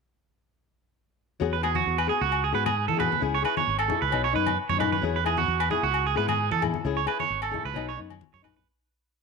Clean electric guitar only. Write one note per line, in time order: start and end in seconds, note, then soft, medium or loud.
1.53 1.63 B4 medium
1.64 1.75 G#4 medium
1.76 1.97 F#4 medium
1.98 2.09 B4 medium
2.09 2.20 G#4 medium
2.21 2.43 F#4 medium
2.44 2.54 G#4 medium
2.55 2.66 B4 medium
2.66 2.87 G#4 medium
2.88 2.99 A4 medium
3.00 3.21 B4 medium
3.35 3.45 C#5 medium
3.45 3.56 B4 medium
3.57 3.78 C#5 medium
3.79 4.01 A4 medium
4.02 4.23 B4 medium
4.24 4.35 C#5 medium
4.36 4.57 B4 medium
4.69 4.80 C#5 medium
4.80 4.91 B4 medium
4.92 5.03 B4 medium
5.16 5.26 B4 medium
5.26 5.37 G#4 medium
5.38 5.59 F#4 medium
5.60 5.71 B4 medium
5.71 5.82 G#4 medium
5.83 6.05 F#4 medium
6.06 6.17 G#4 medium
6.17 6.28 B4 medium
6.29 6.50 G#4 medium
6.52 6.62 A4 medium
6.97 7.07 C#5 medium
7.08 7.19 B4 medium
7.20 7.41 C#5 medium
7.43 7.64 A4 medium
7.65 7.87 B4 medium
7.89 7.99 C#5 medium
8.34 8.44 C#5 medium
8.44 8.55 B4 medium
8.57 8.67 B4 medium